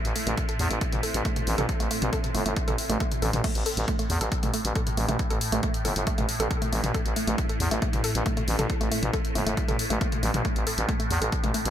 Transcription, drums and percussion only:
0.05 closed hi-hat medium
0.16 open hi-hat loud
0.27 closed hi-hat medium
0.38 kick loud
0.38 closed hi-hat medium
0.49 closed hi-hat medium
0.59 open hi-hat medium
0.71 closed hi-hat medium
0.81 kick loud
0.81 closed hi-hat medium
0.92 closed hi-hat medium
0.92 mid tom loud
1.03 open hi-hat loud
1.14 closed hi-hat medium
1.25 kick loud
1.25 closed hi-hat medium
1.36 closed hi-hat medium
1.36 mid tom medium
1.47 open hi-hat medium
1.58 closed hi-hat medium
1.58 mid tom medium
1.69 kick loud
1.69 closed hi-hat medium
1.80 closed hi-hat medium
1.91 open hi-hat loud
2.02 closed hi-hat medium
2.02 mid tom medium
2.13 kick loud
2.13 closed hi-hat medium
2.24 closed hi-hat medium
2.24 mid tom medium
2.35 open hi-hat medium
2.46 closed hi-hat medium
2.57 kick loud
2.57 closed hi-hat medium
2.68 closed hi-hat medium
2.68 mid tom medium
2.78 open hi-hat loud
2.90 closed hi-hat medium
3.00 kick loud
3.00 closed hi-hat medium
3.12 closed hi-hat medium
3.12 mid tom medium
3.22 open hi-hat medium
3.33 closed hi-hat medium
3.33 mid tom medium
3.44 kick loud
3.44 closed hi-hat medium
3.44 crash medium
3.55 closed hi-hat medium
3.66 open hi-hat loud
3.77 closed hi-hat medium
3.88 kick loud
3.88 closed hi-hat medium
3.99 closed hi-hat medium
4.10 open hi-hat medium
4.21 closed hi-hat medium
4.32 kick loud
4.32 closed hi-hat medium
4.43 closed hi-hat medium
4.43 mid tom medium
4.54 open hi-hat loud
4.65 closed hi-hat medium
4.75 kick loud
4.75 closed hi-hat medium
4.87 closed hi-hat medium
4.87 mid tom medium
4.97 open hi-hat medium
5.09 closed hi-hat medium
5.09 mid tom medium
5.19 kick loud
5.19 closed hi-hat medium
5.30 closed hi-hat medium
5.41 open hi-hat loud
5.52 closed hi-hat medium
5.63 kick loud
5.63 closed hi-hat medium
5.74 closed hi-hat medium
5.85 open hi-hat loud
5.96 closed hi-hat medium
6.07 kick loud
6.07 closed hi-hat medium
6.18 closed hi-hat medium
6.18 mid tom medium
6.29 open hi-hat loud
6.40 closed hi-hat medium
6.51 kick loud
6.51 closed hi-hat medium
6.62 closed hi-hat medium
6.62 mid tom medium
6.73 open hi-hat loud
6.84 closed hi-hat medium
6.84 mid tom medium
6.94 kick loud
6.94 closed hi-hat medium
7.06 closed hi-hat medium
7.16 open hi-hat loud
7.28 closed hi-hat medium
7.38 kick loud
7.38 closed hi-hat medium
7.49 closed hi-hat medium
7.60 open hi-hat loud
7.71 closed hi-hat medium
7.82 kick loud
7.82 closed hi-hat medium
7.93 closed hi-hat medium
7.93 mid tom medium
8.04 open hi-hat loud
8.15 closed hi-hat medium
8.26 kick loud
8.26 closed hi-hat medium
8.37 closed hi-hat medium
8.37 mid tom medium
8.48 open hi-hat medium
8.59 closed hi-hat medium
8.59 mid tom medium
8.70 kick loud
8.70 closed hi-hat medium
8.81 closed hi-hat medium
8.92 open hi-hat loud
9.03 closed hi-hat medium
9.03 mid tom medium
9.13 kick loud
9.13 closed hi-hat medium
9.25 closed hi-hat medium
9.35 open hi-hat medium
9.47 closed hi-hat medium
9.57 kick loud
9.57 closed hi-hat medium
9.68 closed hi-hat medium
9.68 mid tom loud
9.79 open hi-hat loud
9.90 closed hi-hat medium
10.01 kick loud
10.01 closed hi-hat medium
10.12 closed hi-hat medium
10.12 mid tom medium
10.23 open hi-hat medium
10.34 closed hi-hat medium
10.34 mid tom medium
10.45 kick loud
10.45 closed hi-hat medium
10.56 closed hi-hat medium
10.67 open hi-hat loud
10.78 closed hi-hat medium
10.89 kick loud
10.89 closed hi-hat medium
11.00 closed hi-hat medium
11.11 open hi-hat medium
11.22 closed hi-hat medium
11.32 kick loud
11.32 closed hi-hat medium
11.44 closed hi-hat medium
11.44 mid tom medium
11.54 open hi-hat loud
11.65 closed hi-hat medium

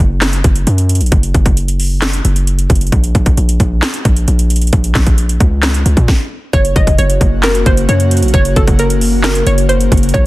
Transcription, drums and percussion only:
0.21 snare loud
0.21 clap medium
0.21 closed hi-hat medium
0.33 closed hi-hat medium
0.44 kick loud
0.44 closed hi-hat medium
0.56 closed hi-hat medium
0.67 closed hi-hat medium
0.78 closed hi-hat medium
0.89 closed hi-hat medium
0.95 closed hi-hat medium
1.01 closed hi-hat soft
1.06 closed hi-hat soft
1.12 kick loud
1.12 closed hi-hat medium
1.23 closed hi-hat medium
1.34 kick medium
1.34 closed hi-hat medium
1.46 kick medium
1.46 closed hi-hat medium
1.57 closed hi-hat medium
1.68 closed hi-hat medium
1.80 open hi-hat medium
2.02 snare loud
2.02 clap medium
2.02 closed hi-hat medium
2.13 closed hi-hat medium
2.25 closed hi-hat medium
2.36 closed hi-hat medium
2.47 closed hi-hat medium
2.59 closed hi-hat medium
2.70 kick medium
2.70 closed hi-hat medium
2.75 closed hi-hat medium
2.81 closed hi-hat soft
2.87 closed hi-hat soft
2.92 kick loud
2.92 closed hi-hat medium
3.04 closed hi-hat medium
3.15 kick medium
3.15 closed hi-hat medium
3.26 kick medium
3.26 closed hi-hat medium
3.37 closed hi-hat medium
3.49 closed hi-hat medium
3.60 kick medium
3.60 closed hi-hat medium
3.82 snare loud
3.82 clap medium
3.82 closed hi-hat medium
3.94 closed hi-hat medium
4.05 kick loud
4.05 closed hi-hat medium
4.16 closed hi-hat medium
4.28 closed hi-hat medium
4.39 closed hi-hat medium
4.50 closed hi-hat medium
4.56 closed hi-hat medium
4.62 closed hi-hat soft
4.67 closed hi-hat soft
4.73 kick loud
4.73 closed hi-hat medium
4.84 closed hi-hat medium
4.95 kick medium
4.95 snare medium
4.95 clap medium
4.95 closed hi-hat medium
5.07 kick medium
5.07 closed hi-hat medium
5.18 closed hi-hat medium
5.29 closed hi-hat medium
5.40 kick medium
5.40 closed hi-hat medium
5.62 snare loud
5.62 clap medium
5.62 closed hi-hat medium
5.74 closed hi-hat medium
5.86 closed hi-hat medium
5.97 kick loud
5.97 closed hi-hat medium
6.08 kick loud
6.08 snare medium
6.53 kick loud
6.53 closed hi-hat medium
6.65 closed hi-hat medium
6.76 kick loud
6.76 closed hi-hat medium
6.87 kick medium
6.87 closed hi-hat medium
6.98 closed hi-hat medium
7.10 closed hi-hat medium
7.21 kick medium
7.21 closed hi-hat medium
7.43 snare loud
7.43 clap loud
7.43 closed hi-hat medium
7.55 closed hi-hat medium
7.66 kick loud
7.66 closed hi-hat medium
7.77 closed hi-hat medium
7.89 closed hi-hat medium
8.00 closed hi-hat medium
8.11 closed hi-hat medium
8.17 closed hi-hat medium
8.22 closed hi-hat medium
8.28 closed hi-hat soft
8.34 kick loud
8.34 closed hi-hat medium
8.45 closed hi-hat medium
8.56 kick loud
8.56 closed hi-hat medium
8.68 kick medium
8.68 closed hi-hat medium
8.79 closed hi-hat medium
8.90 closed hi-hat medium
9.01 open hi-hat medium
9.23 snare loud
9.23 clap medium
9.23 closed hi-hat medium
9.35 closed hi-hat medium
9.47 closed hi-hat medium
9.58 closed hi-hat medium
9.69 closed hi-hat medium
9.81 closed hi-hat medium
9.92 kick medium
9.92 closed hi-hat medium
9.97 closed hi-hat medium
10.03 closed hi-hat medium
10.09 closed hi-hat soft
10.14 kick loud
10.14 closed hi-hat medium

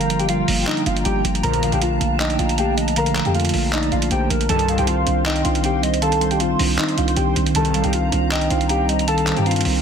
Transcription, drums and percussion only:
0.01 closed hi-hat medium
0.10 closed hi-hat medium
0.20 closed hi-hat medium
0.29 closed hi-hat medium
0.48 open hi-hat medium
0.67 clap loud
0.67 closed hi-hat medium
0.77 closed hi-hat medium
0.86 closed hi-hat medium
0.97 closed hi-hat medium
1.05 closed hi-hat medium
1.25 closed hi-hat medium
1.35 closed hi-hat medium
1.43 closed hi-hat medium
1.53 closed hi-hat medium
1.63 closed hi-hat medium
1.72 closed hi-hat medium
1.82 closed hi-hat medium
2.01 closed hi-hat medium
2.20 clap loud
2.20 closed hi-hat medium
2.30 closed hi-hat medium
2.39 closed hi-hat medium
2.49 closed hi-hat medium
2.58 closed hi-hat medium
2.78 closed hi-hat medium
2.88 closed hi-hat medium
2.96 closed hi-hat loud
3.06 closed hi-hat medium
3.15 clap medium
3.15 closed hi-hat medium
3.25 closed hi-hat medium
3.35 closed hi-hat soft
3.40 closed hi-hat medium
3.45 closed hi-hat medium
3.49 closed hi-hat medium
3.54 open hi-hat medium
3.73 clap loud
3.73 closed hi-hat medium
3.83 closed hi-hat medium
3.92 closed hi-hat medium
4.02 closed hi-hat medium
4.11 closed hi-hat medium
4.30 closed hi-hat medium
4.41 closed hi-hat medium
4.49 closed hi-hat medium
4.59 closed hi-hat medium
4.68 closed hi-hat medium
4.78 closed hi-hat medium
4.87 closed hi-hat medium
5.07 closed hi-hat medium
5.26 clap loud
5.26 closed hi-hat medium
5.36 closed hi-hat medium
5.45 closed hi-hat medium
5.55 closed hi-hat medium
5.64 closed hi-hat medium
5.83 closed hi-hat medium
5.94 closed hi-hat medium
6.02 closed hi-hat loud
6.12 closed hi-hat medium
6.21 closed hi-hat medium
6.31 closed hi-hat medium
6.40 closed hi-hat medium
6.59 open hi-hat medium
6.79 clap loud
6.79 closed hi-hat medium
6.88 closed hi-hat medium
6.98 closed hi-hat medium
7.08 closed hi-hat medium
7.17 closed hi-hat medium
7.36 closed hi-hat medium
7.46 closed hi-hat medium
7.55 closed hi-hat medium
7.65 closed hi-hat medium
7.74 closed hi-hat medium
7.84 closed hi-hat medium
7.93 closed hi-hat medium
8.12 closed hi-hat medium
8.31 clap loud
8.31 closed hi-hat medium
8.41 closed hi-hat medium
8.50 closed hi-hat medium
8.61 closed hi-hat medium
8.69 closed hi-hat medium
8.89 closed hi-hat medium
8.99 closed hi-hat medium
9.08 closed hi-hat loud
9.18 closed hi-hat medium
9.27 clap loud
9.27 closed hi-hat medium
9.37 closed hi-hat medium
9.46 closed hi-hat soft
9.51 closed hi-hat medium
9.56 closed hi-hat medium
9.61 closed hi-hat medium
9.65 open hi-hat medium

